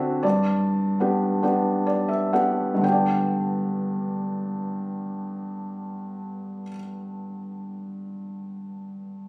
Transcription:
Already playing: D3 C4 D4 F#4 E5
0.23 G2 D5
1.00 B3 D4 G4
1.43 B3 D4 G4
1.87 D5
2.09 E5
2.33 B3 D4 G4 F#5
2.75 G2 D3
2.81 B3 G5
2.85 D4 G4
2.92 D5

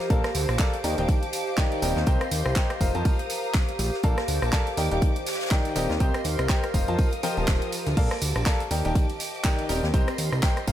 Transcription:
Already playing: G4 A#4 C5 F5
0.00 tambourine
0.10 A#1 A#3 A4 A#4 D5 F5 A5 D6, kick, closed hi-hat, tambourine
0.24 cross-stick, snare, closed hi-hat, tambourine
0.35 D2, closed hi-hat, open hi-hat, tambourine
0.45 A5
0.49 A#1, cross-stick, closed hi-hat, tambourine
0.59 A4 A#4 D5 F5 A5, kick, snare, clap, closed hi-hat, tambourine
0.73 closed hi-hat, tambourine
0.84 D#2 D#3 G4 A#4 D5 D#5 G5, closed hi-hat, open hi-hat, tambourine
0.98 D#1 D#3 G4 A#4 D5 D#5 G5, closed hi-hat, tambourine
1.08 kick, closed hi-hat, tambourine
1.23 closed hi-hat, tambourine
1.32 closed hi-hat, open hi-hat, tambourine
1.47 tambourine
1.57 D#3 G4 A#4 D5 D#5 G5, kick, snare, clap, closed hi-hat, tambourine
1.72 closed hi-hat, tambourine
1.82 D#1 C4 G4 A#4 D5 D#5 G5, snare, closed hi-hat, open hi-hat, tambourine
1.96 D#2, snare, tambourine
2.06 C2 C4 G4 A#4 C5 D#5 G5 C6, kick, closed hi-hat, tambourine
2.21 cross-stick, closed hi-hat, tambourine
2.31 D#2, closed hi-hat, open hi-hat, tambourine
2.41 A#5
2.46 C2, cross-stick, tambourine
2.56 G4 A#4 C5 D#5 G5, kick, snare, clap, closed hi-hat, tambourine
2.70 cross-stick, closed hi-hat, tambourine
2.81 F1 F3 F4 A#4 C5 D#5 F5 D#6, kick, closed hi-hat, open hi-hat, tambourine
2.95 F2 F3 F4 A#4 C5 D#5 A5, closed hi-hat, tambourine
3.05 kick, closed hi-hat, open hi-hat, tambourine
3.19 closed hi-hat, tambourine
3.30 closed hi-hat, open hi-hat, tambourine
3.44 tambourine
3.54 kick, snare, clap, closed hi-hat, tambourine
3.69 closed hi-hat, tambourine
3.79 A#1, closed hi-hat, open hi-hat, tambourine
3.94 snare, tambourine
4.03 A#1 A#3 A4 A#4 D5 F5 A5 D6, kick, closed hi-hat, tambourine
4.17 cross-stick, snare, closed hi-hat, tambourine
4.28 D2, closed hi-hat, open hi-hat, tambourine
4.42 A#1, cross-stick, closed hi-hat, tambourine
4.53 A4 A#4 D5 F5 A5, kick, snare, clap, closed hi-hat, tambourine
4.67 closed hi-hat, tambourine
4.77 D#2 D#3 G4 A#4 D5 D#5 G5, closed hi-hat, open hi-hat, tambourine
4.91 D#1 D#3 G4 A#4 D5 D#5 G5, closed hi-hat, tambourine
5.02 kick, closed hi-hat, tambourine
5.16 closed hi-hat, tambourine
5.26 snare, closed hi-hat, open hi-hat, tambourine
5.33 A#4, snare, closed hi-hat
5.40 snare, closed hi-hat, tambourine
5.45 snare, closed hi-hat
5.51 D#3 G4 A#4 D5 D#5 G5, kick, snare, clap, closed hi-hat, tambourine
5.65 closed hi-hat, tambourine
5.75 D#1 C4 G4 A#4 D5 D#5 G5, snare, closed hi-hat, open hi-hat, tambourine
5.90 D#2, snare, tambourine
6.00 C2 C4 G4 A#4 C5 D#5 G5 C6, kick, closed hi-hat, tambourine
6.14 cross-stick, closed hi-hat, tambourine
6.24 D#2, closed hi-hat, open hi-hat, tambourine
6.39 C2, cross-stick, closed hi-hat, tambourine
6.49 G4 A#4 C5 D#5 G5, kick, snare, clap, closed hi-hat, tambourine
6.64 cross-stick, closed hi-hat, tambourine
6.74 F1 F3 F4 A#4 C5 D#5 F5 D#6, kick, closed hi-hat, open hi-hat, tambourine
6.88 F2 F3 F4 A#4 C5 D#5 A5, closed hi-hat, tambourine
6.98 kick, closed hi-hat, open hi-hat, tambourine
7.12 closed hi-hat, tambourine
7.23 F3 F4 A#4 C5 D#5 G5, closed hi-hat, open hi-hat, tambourine
7.37 D#1 F3 F4 A#4 C5 D#5 A5, tambourine
7.48 D#1, kick, snare, clap, closed hi-hat, tambourine
7.62 closed hi-hat, tambourine
7.72 closed hi-hat, open hi-hat, tambourine
7.86 D2, snare, closed hi-hat, tambourine
7.97 A#1 A#3 A4 A#4 D5 F5 A5 D6, kick, closed hi-hat, crash, tambourine
8.11 cross-stick, snare, closed hi-hat, tambourine
8.22 D2, closed hi-hat, open hi-hat, tambourine
8.32 A5, closed hi-hat, tambourine
8.36 A#1, cross-stick
8.46 A4 A#4 D5 F5 A5, kick, snare, clap, closed hi-hat, tambourine
8.60 closed hi-hat, tambourine
8.71 D#2 D#3 G4 A#4 D5 D#5 G5 D6, closed hi-hat, open hi-hat, tambourine
8.85 D#1 D#3 G4 A#4 D5 D#5 G5, closed hi-hat, tambourine
8.95 kick, closed hi-hat, tambourine
9.10 closed hi-hat, tambourine
9.20 closed hi-hat, open hi-hat, tambourine
9.35 tambourine
9.44 D#3 G4 A#4 D5 D#5 G5, kick, snare, clap, closed hi-hat, tambourine
9.59 closed hi-hat, tambourine
9.69 D#1 C4 G4 A#4 D5 D#5 G5, snare, closed hi-hat, open hi-hat, tambourine
9.83 D#2, snare, tambourine
9.94 C2 C4 G4 A#4 C5 D#5 G5 C6, kick, closed hi-hat, tambourine
10.08 cross-stick, closed hi-hat, tambourine
10.18 D#2, closed hi-hat, open hi-hat, tambourine
10.28 A#5
10.32 C2, cross-stick, tambourine
10.42 G4 A#4 C5 D#5 G5, kick, snare, clap, closed hi-hat, tambourine
10.57 cross-stick, closed hi-hat, tambourine
10.67 F1 F3 F4 A#4 C5 D#5 F5 D#6, kick, closed hi-hat, open hi-hat, tambourine

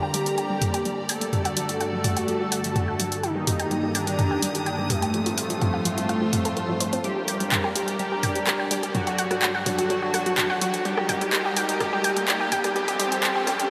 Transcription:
Already playing: D3 A#3 F4 G4 C5 D5 A#5
0.03 G5
0.14 G3 G4, open hi-hat
0.26 G4, closed hi-hat
0.38 G5, closed hi-hat
0.50 G3
0.62 G4, mid tom, open hi-hat
0.74 G5, closed hi-hat
0.85 G3, closed hi-hat
0.98 G4
1.09 A4 G5, open hi-hat
1.21 G3, closed hi-hat
1.33 G2 D3 G3 A3 F#4, closed hi-hat, mid tom
1.38 F#4
1.45 F#5, open hi-hat
1.57 F#3, open hi-hat
1.69 F#4, closed hi-hat
1.81 F#5, closed hi-hat
1.93 F#3
2.04 F#4, mid tom, open hi-hat
2.17 F#5 A5, closed hi-hat
2.28 F#3, closed hi-hat
2.40 F#4
2.52 F#5, open hi-hat
2.64 F#3, closed hi-hat
2.76 F#4, closed hi-hat, mid tom
2.88 F#5
3.00 F#3, open hi-hat
3.12 F#4, closed hi-hat
3.23 D#3 A#3 D#4 G4 G5, closed hi-hat
3.36 G3
3.47 G4, mid tom, open hi-hat
3.52 A#5
3.60 G5 D#6, closed hi-hat
3.71 G3, closed hi-hat
3.83 G4
3.95 D4 G5, open hi-hat
4.07 G3, closed hi-hat
4.19 G4, closed hi-hat, mid tom
4.31 G5
4.42 G3, open hi-hat
4.55 G4, closed hi-hat
4.66 G5, closed hi-hat
4.79 G3
4.90 A3 G4, mid tom, open hi-hat
5.02 G5, closed hi-hat
5.14 F3 G3 C4 A4, closed hi-hat
5.18 F4
5.26 F4, open hi-hat
5.38 F5, open hi-hat
5.50 F3, closed hi-hat
5.61 F4, closed hi-hat, mid tom
5.70 C5 F5
5.85 F3, open hi-hat
5.98 F4 A5, closed hi-hat
6.09 F5, closed hi-hat
6.21 F3
6.33 F5, mid tom, open hi-hat
6.45 A4, closed hi-hat
6.57 A3, closed hi-hat
6.69 F3
6.80 C5, open hi-hat
6.93 C4, closed hi-hat
7.04 G3 D4 G4 A#4, closed hi-hat, riser
7.17 G4 D5
7.21 A#5
7.28 G5, open hi-hat
7.40 G3, closed hi-hat
7.52 G4, clap, closed hi-hat, mid tom
7.64 G5, cross-stick
7.76 G3 G4, open hi-hat
7.88 G4, closed hi-hat
7.99 G3 G4, closed hi-hat
8.12 G4
8.23 G5, mid tom, open hi-hat
8.35 G3, closed hi-hat
8.47 G4, cross-stick, clap, closed hi-hat
8.59 G5
8.71 G3 G4, open hi-hat
8.83 G4, closed hi-hat
8.95 G2 F#3 F#4 A4, closed hi-hat, mid tom
8.99 F#4
9.07 F#4, open hi-hat
9.18 F#5, open hi-hat
9.31 F#3, cross-stick, closed hi-hat
9.42 F#4, clap, closed hi-hat
9.46 A5
9.55 F#5
9.66 F#3 F#4, mid tom, open hi-hat
9.79 F#4, closed hi-hat
9.90 F#3 F#4, closed hi-hat
10.02 F#4
10.14 F#5, cross-stick, open hi-hat
10.26 F#3, closed hi-hat
10.38 F#4, clap, closed hi-hat, mid tom
10.50 F#5
10.61 F#3 F#4, open hi-hat
10.74 F#4, closed hi-hat
10.85 G3 D#4 G4 A#4, closed hi-hat
10.96 G4 D#5 A#5, cross-stick
11.09 G5, mid tom, open hi-hat
11.21 G3, closed hi-hat
11.33 G3 G4, clap, closed hi-hat
11.45 G4
11.57 G5, open hi-hat
11.69 G3, closed hi-hat
11.80 G3 G4, cross-stick, closed hi-hat, mid tom
11.93 G4
12.04 G5, open hi-hat
12.17 G3, closed hi-hat
12.28 G3 G4, clap, closed hi-hat
12.40 G4
12.52 G5, mid tom, open hi-hat
12.64 G3, cross-stick, closed hi-hat
12.75 G2 F3 G3 C4 G4 A4, closed hi-hat
12.83 F4
12.88 G4 A5, open hi-hat
12.99 G3 G4 C5, open hi-hat
13.12 G4, closed hi-hat
13.23 G3 G4, clap, closed hi-hat, mid tom
13.35 G4
13.47 G3 G4, cross-stick, open hi-hat
13.59 G4, closed hi-hat

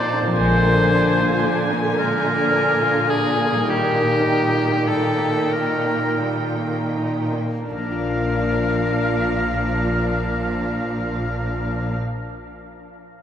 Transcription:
Already playing: A#2 D#3 F3 D#4 A4 D5 A5
0.14 C4
0.22 A#2
0.26 F3
0.31 D4
0.35 A#1 A#2 G#4 C5 G#5
0.40 D3 G#3
0.67 A#3
0.94 D4
1.21 F4
1.46 D4
1.72 A#3
1.98 G#3 A#4
2.25 A#3
2.53 D4
2.82 F4
3.10 D4 G#4
3.39 A#3
3.51 A#2 G3
3.60 D#4
3.64 D#3 G3 G4 G5
3.70 G4
3.95 A#3
4.23 D#4
4.56 A#3
4.88 G3 A4
5.19 A#3
5.52 D#4 A#4
5.86 A#3
6.21 G3
6.57 A#3
6.96 D#4
7.34 A#3
7.69 A#1 A#2 F3 D4 A#4 F5
7.78 A#3
7.85 D4
7.91 F4
7.98 D5

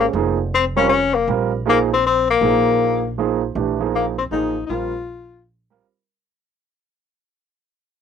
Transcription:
Already playing: G#1 G#3 C#4 G4 C5
0.00 A#3
0.13 F1 F3 A#3 D#4 G#4
0.54 C4
0.76 G3 C4 C#4 F4 A#4
0.89 C#4
1.15 A#3
1.28 A#1 G3 C4 F4 A#4
1.66 F3 A#3 D#4 G#4
1.93 C4
2.06 C4
2.30 A#3
2.41 A#1 F3 A#3 D#4 G#4
3.18 F3 A#3 D#4 G#4
3.55 A#1 E3 A3 D4 G4
3.79 F3 A#3 D#4 G#4
3.95 A#3
4.18 C4
4.31 A1 F3 A#3 D#4 G#4
4.66 A#1 G3 C4 D#4 F4
4.71 F4 A#4
5.70 G3 C4 F4 A#4

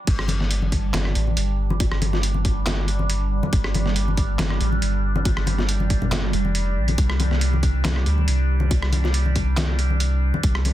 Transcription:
0.07 G1 G3 D4, kick, closed hi-hat, crash
0.19 cross-stick
0.28 closed hi-hat, high conga
0.41 snare
0.51 closed hi-hat
0.62 high conga
0.72 kick, closed hi-hat
0.94 G1, snare, clap, closed hi-hat, high conga
1.05 cross-stick
1.15 A1, closed hi-hat
1.27 high conga
1.37 G1, closed hi-hat
1.70 high conga
1.80 kick, closed hi-hat, high bongo
1.92 G1, cross-stick
2.02 closed hi-hat, high conga
2.13 snare, high bongo
2.23 closed hi-hat
2.34 high conga
2.45 kick, closed hi-hat
2.66 snare, clap, closed hi-hat, high conga
2.88 closed hi-hat
2.99 high conga
3.10 closed hi-hat
3.43 high conga
3.53 G1, kick, closed hi-hat
3.64 cross-stick
3.74 closed hi-hat, high conga
3.86 snare
3.96 closed hi-hat
4.08 high conga
4.17 kick, closed hi-hat
4.39 G1, snare, clap, closed hi-hat, high conga
4.50 cross-stick
4.61 A1, closed hi-hat
4.72 high conga
4.82 G1, closed hi-hat
5.16 high conga
5.25 kick, closed hi-hat, high bongo
5.37 G1, cross-stick
5.47 closed hi-hat, high conga
5.58 snare, high bongo
5.69 closed hi-hat
5.80 high conga
5.90 kick, closed hi-hat
6.02 low conga
6.11 snare, clap, closed hi-hat, high conga
6.33 F1, closed hi-hat
6.45 high conga
6.55 closed hi-hat
6.77 A#1
6.88 closed hi-hat, high conga
6.98 C2, kick, closed hi-hat
7.10 cross-stick
7.20 closed hi-hat, high conga
7.31 snare
7.41 closed hi-hat
7.53 high conga
7.63 kick, closed hi-hat
7.85 C2, snare, clap, closed hi-hat, high conga
7.96 cross-stick
8.06 D2, closed hi-hat
8.18 high conga
8.28 C2, closed hi-hat
8.60 high conga
8.71 kick, closed hi-hat, high bongo
8.82 C2, cross-stick
8.92 closed hi-hat, high conga
9.04 snare, high bongo
9.14 closed hi-hat
9.26 high conga
9.36 kick, closed hi-hat
9.57 snare, clap, closed hi-hat, high conga
9.79 closed hi-hat
9.90 high conga
10.00 closed hi-hat
10.34 high conga
10.43 C2, kick, closed hi-hat
10.55 cross-stick
10.65 closed hi-hat, high conga

